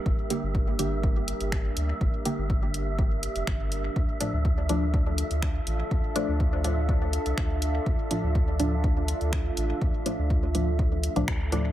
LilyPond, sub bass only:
\new Staff \with { instrumentName = "Sub bass" } { \clef bass \time 4/4 \key d \minor \tempo 4 = 123 g,,16 r8 g,,4.~ g,,16 r16 g,,8 r16 d,16 r16 | g,,16 r8 g,,4.~ g,,16 r16 f,,16 g,,8. r16 | d,16 r8 d,4.~ d,16 r16 d,8 r16 a,,16 r16 | d,16 r8 d,4.~ d,16 r16 c,16 d,8. r16 |
d,16 r8 d,4.~ d,16 r16 d,8 r16 a,,16 r16 | d,16 r8 d,4.~ d,16 r16 c,16 d,8. r16 | }